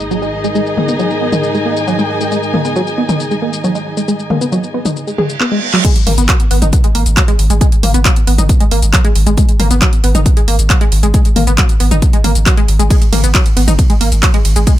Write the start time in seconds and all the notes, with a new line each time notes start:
Already playing: G#2 D#3 D#4 G#4 D#5 G#5, impact
0.00 shaker
0.11 F#3, shaker
0.22 G#3, shaker
0.44 G#3, shaker
0.55 G#3, shaker
0.66 shaker
0.77 A#3, mid tom
0.88 B3, shaker
0.99 F#3, shaker
1.10 shaker
1.21 B3
1.32 D#4, mid tom, shaker
1.43 shaker
1.54 G#3, shaker
1.66 A#3
1.77 shaker
1.88 F#3, shaker
1.99 G#3, shaker
2.21 G#3, shaker
2.32 G#3, shaker
2.43 shaker
2.54 A#3, mid tom
2.65 B3, shaker
2.76 F#3, shaker
2.87 shaker
2.98 B3
3.09 D#4, mid tom, shaker
3.20 shaker
3.31 G#3, shaker
3.42 A#3
3.53 shaker
3.64 F#3, shaker
3.75 G#3, shaker
3.97 G#3, shaker
4.08 G#3, shaker
4.19 shaker
4.30 A#3, mid tom
4.41 B3, shaker
4.52 F#3, shaker
4.63 shaker
4.74 B3
4.85 D#4, mid tom, shaker
4.96 reverse cymbal, shaker
5.07 G#3, shaker
5.18 G#4, mid tom
5.30 shaker
5.40 B3, clap
5.52 G#3
5.74 F#3, clap
5.85 G#3, kick, closed hi-hat, crash, shaker
5.96 closed hi-hat, shaker
6.07 G#1 A#3, open hi-hat, mid tom
6.18 G#1 B3, closed hi-hat, shaker
6.29 F#3, kick, clap, closed hi-hat, shaker
6.40 closed hi-hat, shaker
6.51 G#1 B3, open hi-hat
6.62 G#1 D#4, closed hi-hat, mid tom, shaker
6.73 kick, closed hi-hat, shaker
6.84 G#3, closed hi-hat, shaker
6.95 G#1 A#3, open hi-hat
7.06 G#1, closed hi-hat, shaker
7.17 F#3, kick, clap, closed hi-hat, shaker
7.28 G#3, closed hi-hat, shaker
7.39 G#1, open hi-hat
7.50 G#1 G#3, closed hi-hat, shaker
7.61 G#3, kick, closed hi-hat, shaker
7.72 closed hi-hat, shaker
7.83 G#1 A#3, open hi-hat, mid tom
7.94 G#1 B3, closed hi-hat, shaker
8.05 F#3, kick, clap, closed hi-hat, shaker
8.16 closed hi-hat, shaker
8.27 G#1 B3, open hi-hat
8.38 G#1 D#4, closed hi-hat, mid tom, shaker
8.49 kick, closed hi-hat, shaker
8.60 G#3, closed hi-hat, shaker
8.71 G#1 A#3, open hi-hat
8.82 G#1, closed hi-hat, shaker
8.93 F#3, kick, clap, closed hi-hat, shaker
9.05 G#3, closed hi-hat, shaker
9.15 G#1, open hi-hat
9.26 G#1 G#3, closed hi-hat, shaker
9.38 G#3, kick, closed hi-hat, shaker
9.49 closed hi-hat, shaker
9.60 G#1 A#3, open hi-hat, mid tom
9.71 G#1 B3, closed hi-hat, shaker
9.82 F#3, kick, clap, closed hi-hat, shaker
9.93 closed hi-hat, shaker
10.04 G#1 B3, open hi-hat
10.15 G#1 D#4, closed hi-hat, mid tom, shaker
10.26 kick, closed hi-hat, shaker
10.37 G#3, closed hi-hat, shaker
10.48 G#1 A#3, open hi-hat
10.59 G#1, closed hi-hat, shaker
10.70 F#3, kick, clap, closed hi-hat, shaker
10.81 G#3, closed hi-hat, shaker
10.92 G#1, open hi-hat
11.03 G#1 G#3, closed hi-hat, shaker
11.14 G#3, kick, closed hi-hat, shaker
11.25 closed hi-hat, shaker
11.36 G#1 A#3, open hi-hat, mid tom
11.47 G#1 B3, closed hi-hat, shaker
11.58 F#3, kick, clap, closed hi-hat, shaker
11.69 closed hi-hat, shaker
11.80 G#1 B3, open hi-hat
11.91 G#1 D#4, closed hi-hat, mid tom, shaker
12.02 kick, closed hi-hat, shaker
12.13 G#3, closed hi-hat, shaker
12.24 G#1 A#3, open hi-hat, mid tom
12.35 G#1, closed hi-hat, shaker
12.46 F#3, kick, clap, closed hi-hat, shaker
12.57 G#3, closed hi-hat, shaker
12.68 G#1, open hi-hat
12.79 G#1 G#3, closed hi-hat, shaker
12.90 G#3, kick, closed hi-hat, ride, shaker
13.02 closed hi-hat, ride, shaker
13.12 G#1 A#3, open hi-hat, mid tom, ride
13.24 G#1 B3, closed hi-hat, ride, shaker
13.35 F#3, kick, clap, closed hi-hat, ride, shaker
13.46 closed hi-hat, ride, shaker
13.57 G#1 B3, open hi-hat, ride
13.68 G#1 D#4, closed hi-hat, mid tom, ride, shaker
13.79 kick, closed hi-hat, ride, shaker
13.90 G#3, closed hi-hat, ride, shaker
14.01 G#1 A#3, open hi-hat, ride
14.12 G#1, closed hi-hat, ride, shaker
14.23 F#3, kick, clap, closed hi-hat, ride, shaker
14.34 G#3, closed hi-hat, ride, shaker
14.45 G#1, open hi-hat, ride
14.56 G#1 G#3, closed hi-hat, ride, shaker
14.67 G#3, kick, closed hi-hat, ride, shaker